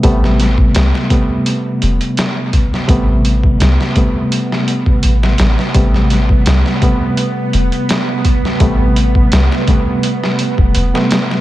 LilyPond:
<<
  \new Staff \with { instrumentName = "Synth drone" } { \time 4/4 \key a \minor \tempo 4 = 84 b1~ | b1~ | b1~ | b1 | }
  \new Staff \with { instrumentName = "Reed electric piano" } { \clef bass \time 4/4 \key a \minor <c g a b>4. <c g a b>2~ <c g a b>8 | <c g a b>4. <c g a b>2~ <c g a b>8 | <c g a b>4. <c g a b>2~ <c g a b>8 | <c g a b>4. <c g a b>4.~ <c g a b>16 <c g a b>8. | }
  \new Staff \with { instrumentName = "808-style bass" } { \clef bass \time 4/4 \key a \minor a,,4 c,16 r4 r16 e,,16 r4 r16 | a,,4 c,16 r4. r16 a,,8 a,,16 r16 | a,,4 c,16 r4 r16 e,,16 r4 r16 | a,,4 c,16 r4. e,,16 e,,16 r8. | }
  \new DrumStaff \with { instrumentName = "Drums" } \drummode { \time 4/4 <hh bd>16 sn16 <hh sn>16 bd16 <hh sn>16 sn16 <hh bd>8 hh8 hh16 hh16 <hh sn>8 <hh bd>16 sn16 | <hh bd>8 hh16 bd16 <hh sn>16 sn16 <hh bd>8 hh16 sn16 hh16 bd16 hh16 sn16 <hh sn>16 sn16 | <hh bd>16 sn16 <hh sn>16 bd16 <hh sn>16 sn16 <hh bd>8 hh8 hh16 hh16 <hh sn>8 <hh bd>16 sn16 | <hh bd>8 hh16 bd16 <hh sn>16 sn16 <hh bd>8 hh16 sn16 hh16 bd16 hh16 sn16 <hh sn>16 sn16 | }
>>